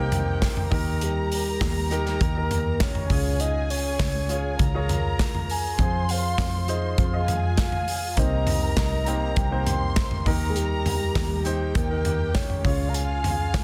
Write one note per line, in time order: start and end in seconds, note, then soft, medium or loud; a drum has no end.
0.00 0.67 C2 loud
0.00 0.73 C3 medium
0.00 0.74 A#3 medium
0.00 0.73 C4 medium
0.00 0.70 D#4 medium
0.00 0.68 G4 medium
0.00 0.71 G4 medium
0.00 0.71 A#4 medium
0.00 0.73 C5 medium
0.00 0.12 D#5 loud
0.00 0.68 G5 medium
0.12 floor tom medium
0.12 hi-hat pedal medium
0.12 open hi-hat medium
0.42 kick loud
0.42 snare loud
0.42 clap medium
0.42 hi-hat pedal medium
0.42 open hi-hat medium
0.57 floor tom medium
0.70 1.57 D#2 loud
0.70 1.57 D#3 medium
0.70 1.69 D#4 medium
0.70 1.69 G4 medium
0.70 1.69 A#4 loud
0.70 3.07 A#4 medium
0.70 3.06 A#5 medium
0.70 kick medium
0.70 hi-hat pedal medium
0.70 open hi-hat medium
1.01 2.23 G4 loud
1.01 hi-hat pedal medium
1.01 open hi-hat loud
1.32 hi-hat pedal medium
1.32 open hi-hat medium
1.61 2.17 D#2 medium
1.61 kick loud
1.61 snare loud
1.61 clap medium
1.61 hi-hat pedal medium
1.61 open hi-hat medium
1.91 2.27 D#4 medium
1.91 2.28 G4 medium
1.91 2.28 A#4 loud
1.91 hi-hat pedal medium
1.91 open hi-hat medium
2.06 snare soft
2.21 3.06 D#2 loud
2.21 2.83 A#4 loud
2.21 kick loud
2.21 hi-hat pedal medium
2.21 open hi-hat medium
2.36 3.10 D#4 medium
2.36 3.11 G4 medium
2.36 3.11 A#4 medium
2.51 floor tom medium
2.51 hi-hat pedal medium
2.51 open hi-hat medium
2.80 3.42 C#5 loud
2.80 kick loud
2.80 snare loud
2.80 clap medium
2.80 hi-hat pedal medium
2.80 open hi-hat medium
2.95 floor tom medium
3.10 3.96 C#2 loud
3.10 3.96 C#3 medium
3.10 4.08 F4 medium
3.10 4.57 G#4 medium
3.10 4.08 G#4 medium
3.10 4.09 C#5 medium
3.10 4.56 G#5 medium
3.10 kick loud
3.10 hi-hat pedal medium
3.10 open hi-hat medium
3.40 3.70 D#5 loud
3.40 hi-hat pedal medium
3.40 open hi-hat loud
3.70 4.85 C#5 loud
3.70 hi-hat pedal medium
3.70 open hi-hat medium
3.99 4.55 C#2 medium
3.99 kick loud
3.99 snare loud
3.99 clap medium
3.99 hi-hat pedal medium
3.99 open hi-hat loud
4.29 4.66 F4 medium
4.29 4.66 G#4 medium
4.29 4.67 C#5 medium
4.29 hi-hat pedal medium
4.29 open hi-hat medium
4.59 5.75 C#2 medium
4.59 5.76 A#4 medium
4.59 5.76 A#5 medium
4.59 kick loud
4.59 hi-hat pedal medium
4.59 open hi-hat loud
4.74 5.60 F4 medium
4.74 5.60 G#4 medium
4.74 5.61 C#5 medium
4.89 floor tom medium
4.89 hi-hat pedal medium
4.89 open hi-hat medium
5.19 kick loud
5.19 snare loud
5.19 clap medium
5.19 hi-hat pedal medium
5.19 open hi-hat medium
5.35 floor tom medium
5.49 6.12 G#5 loud
5.49 hi-hat pedal medium
5.49 open hi-hat medium
5.78 6.34 F2 loud
5.78 6.52 F4 medium
5.78 6.52 G#4 medium
5.78 7.25 C5 medium
5.78 6.53 C5 medium
5.78 7.25 C6 medium
5.78 kick loud
5.78 hi-hat pedal medium
5.78 open hi-hat medium
6.09 6.70 F5 loud
6.09 hi-hat pedal medium
6.09 open hi-hat medium
6.38 6.94 F2 medium
6.38 kick loud
6.38 snare loud
6.38 clap medium
6.38 hi-hat pedal medium
6.38 open hi-hat medium
6.68 7.05 F4 medium
6.68 7.05 G#4 medium
6.68 7.05 C5 medium
6.68 6.98 D#5 medium
6.68 hi-hat pedal medium
6.68 open hi-hat medium
6.98 8.13 F2 loud
6.98 7.54 F5 loud
6.98 kick loud
6.98 hi-hat pedal medium
6.98 open hi-hat loud
7.13 7.98 F4 medium
7.13 7.99 G#4 medium
7.13 7.99 D#5 medium
7.28 8.16 G#4 medium
7.28 8.16 G#5 medium
7.28 floor tom medium
7.28 hi-hat pedal medium
7.28 open hi-hat medium
7.58 8.19 F5 loud
7.58 kick loud
7.58 snare loud
7.58 clap medium
7.58 hi-hat pedal medium
7.58 open hi-hat medium
7.72 floor tom medium
7.88 hi-hat pedal medium
7.88 open hi-hat medium
8.17 8.73 C2 loud
8.17 9.03 C3 medium
8.17 8.91 A#3 medium
8.17 8.91 C4 medium
8.17 8.91 D#4 medium
8.17 8.91 G4 medium
8.17 9.64 A#4 medium
8.17 8.91 C5 medium
8.17 8.77 D#5 loud
8.17 9.64 A#5 medium
8.17 kick loud
8.17 hi-hat pedal medium
8.17 open hi-hat loud
8.47 floor tom medium
8.47 hi-hat pedal medium
8.47 open hi-hat medium
8.76 9.32 C2 loud
8.76 9.33 D#5 medium
8.76 kick loud
8.76 snare loud
8.76 clap medium
8.76 hi-hat pedal medium
8.76 open hi-hat medium
9.06 9.43 A#3 medium
9.06 9.43 C4 medium
9.06 9.44 D#4 medium
9.06 9.44 G4 medium
9.06 9.44 C5 medium
9.06 hi-hat pedal medium
9.06 open hi-hat medium
9.36 10.22 C2 loud
9.36 9.93 G5 medium
9.36 kick loud
9.36 hi-hat pedal medium
9.36 open hi-hat loud
9.51 10.26 A#3 medium
9.51 10.26 C4 medium
9.51 10.24 D#4 medium
9.51 10.25 G4 medium
9.51 10.26 C5 medium
9.67 10.25 C5 medium
9.67 10.25 C6 medium
9.67 floor tom medium
9.67 hi-hat pedal medium
9.67 open hi-hat medium
9.96 kick loud
9.96 snare loud
9.96 clap loud
9.96 hi-hat pedal medium
9.96 open hi-hat medium
10.11 floor tom medium
10.26 11.11 D#2 loud
10.26 11.12 D#3 medium
10.26 11.23 D#4 loud
10.26 11.24 G4 medium
10.26 11.43 A#4 medium
10.26 11.24 A#4 loud
10.26 11.43 A#5 loud
10.26 kick loud
10.26 hi-hat pedal medium
10.26 open hi-hat medium
10.50 10.58 G#4 medium
10.56 11.76 G4 loud
10.56 hi-hat pedal medium
10.56 open hi-hat loud
10.86 floor tom medium
10.86 hi-hat pedal medium
10.86 open hi-hat medium
11.15 11.71 D#2 loud
11.15 kick loud
11.15 snare loud
11.15 clap medium
11.15 hi-hat pedal medium
11.15 open hi-hat medium
11.45 11.82 D#4 medium
11.45 12.62 G4 medium
11.45 11.82 G4 medium
11.45 11.82 C5 loud
11.45 12.63 G5 medium
11.45 hi-hat pedal medium
11.45 open hi-hat medium
11.75 12.61 D#2 loud
11.75 12.35 A#4 loud
11.75 kick loud
11.75 hi-hat pedal medium
11.75 open hi-hat loud
11.89 12.64 D#4 medium
11.89 12.64 G4 medium
11.89 12.65 A#4 medium
12.05 floor tom medium
12.05 hi-hat pedal medium
12.05 open hi-hat medium
12.34 12.90 C#5 loud
12.34 kick loud
12.34 snare loud
12.34 clap loud
12.34 hi-hat pedal medium
12.34 open hi-hat medium
12.50 floor tom medium
12.64 13.50 C#2 loud
12.64 13.51 C#3 medium
12.64 13.62 F4 medium
12.64 13.64 F4 medium
12.64 13.63 G#4 medium
12.64 13.63 C#5 medium
12.64 13.64 F5 medium
12.64 kick loud
12.64 hi-hat pedal medium
12.64 open hi-hat medium
12.89 12.96 A#5 medium
12.94 13.64 G#5 loud
12.94 hi-hat pedal medium
12.94 open hi-hat loud
13.24 floor tom medium
13.24 hi-hat pedal medium
13.24 open hi-hat medium
13.54 13.64 C#2 loud
13.54 kick loud
13.54 snare loud
13.54 clap medium
13.54 hi-hat pedal medium
13.54 open hi-hat medium